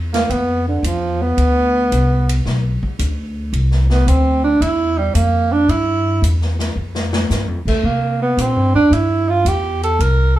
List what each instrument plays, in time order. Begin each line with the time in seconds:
Already playing: upright bass E2
0.14 tenor saxophone A#3, snare, ride
0.30 upright bass F2, tenor saxophone B3, ride
0.68 tenor saxophone D3
0.83 upright bass E2, tenor saxophone F3, hi-hat pedal, ride
1.22 tenor saxophone B3
1.37 upright bass D2, ride
1.92 upright bass C2, hi-hat pedal, ride
2.29 ride
2.45 upright bass B1, snare
2.82 muted upright bass stroke, kick
2.99 upright bass D2, hi-hat pedal, ride
3.53 upright bass C2, ride
3.71 snare
3.90 tenor saxophone B3, snare
4.07 upright bass D2, tenor saxophone C4, hi-hat pedal, ride
4.44 tenor saxophone D4
4.61 upright bass E2, tenor saxophone E4, ride
4.98 tenor saxophone G3
5.14 upright bass F2, tenor saxophone A#3, hi-hat pedal, ride
5.52 tenor saxophone D4
5.68 upright bass G2, tenor saxophone E4, ride
6.22 upright bass E2, hi-hat pedal, ride
6.41 snare
6.59 snare, ride
6.76 upright bass F2
6.95 snare
7.13 snare
7.30 upright bass G2, snare, hi-hat pedal
7.48 upright bass F2
7.65 upright bass D2, tenor saxophone A3, kick, crash
7.83 upright bass C3, tenor saxophone A#3
8.22 tenor saxophone B3
8.37 upright bass A#2, tenor saxophone C4, hi-hat pedal, ride
8.56 upright bass G2
8.74 upright bass E2, tenor saxophone D4
8.91 upright bass G2, tenor saxophone E4, ride
9.29 tenor saxophone F4
9.45 upright bass E2, tenor saxophone G4, hi-hat pedal, ride
9.83 tenor saxophone A4, ride
9.99 upright bass C2, tenor saxophone A#4, ride